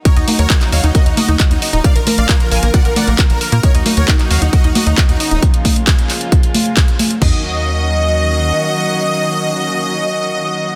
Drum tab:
CC |----------------|----------------|----------------|----------------|
HH |xxoxxxoxxxoxxxox|xxoxxxoxxxoxxxox|xxoxxxoxxxoxxxox|xxoxxxoxxxoxxxox|
CP |----xx------x---|----x-------x---|----xx------x---|----x-x-----x---|
FT |----------------|----------------|----------------|----------------|
CG |--o-------o-----|--o-------o-----|--o-------o-----|--o-------o---o-|
BD |o---o---o---o---|o---o---o---o---|o---o---o---o---|o-o-o---o---o---|

CC |x---------------|----------------|
HH |----------------|----------------|
CP |----------------|----------------|
FT |o---------------|----------------|
CG |----------------|----------------|
BD |o---------------|----------------|